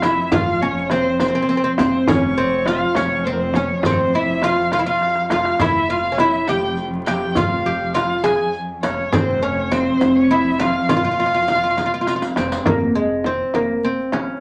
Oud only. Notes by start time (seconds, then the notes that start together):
0.03 E4
0.32 F4
0.62 C#4
0.91 C4
1.21 C4
1.28 C4
1.35 C4
1.42 C4
1.49 C4
1.57 C4
1.64 C4
1.79 C4
2.08 C#4
2.38 C4
2.68 F4
2.96 C#4
3.27 C4
3.56 C#4
3.86 C4
4.15 E4
4.44 F4
4.73 F4
4.79 E4
4.86 F4
5.32 F4
5.61 E4
5.90 F4
6.12 C#4
6.20 E4
6.49 G4
7.08 G4
7.37 F4
7.66 G4
7.95 F4
8.24 G#4
8.83 C#4
9.13 C4
9.43 C#4
9.72 C4
10.31 E4
10.60 F4
10.89 F4
10.97 F4
11.04 F4
11.11 F4
11.20 F4
11.26 F4
11.34 F4
11.42 F4
11.48 F4
11.55 F4
11.64 F4
11.71 F4
11.78 F4
11.86 F4
11.94 F4
12.01 F4
12.08 F4
12.16 F4
12.38 C4
12.67 A#3
12.95 G#3
13.26 C4
13.55 A#3
13.84 C4
14.13 C#4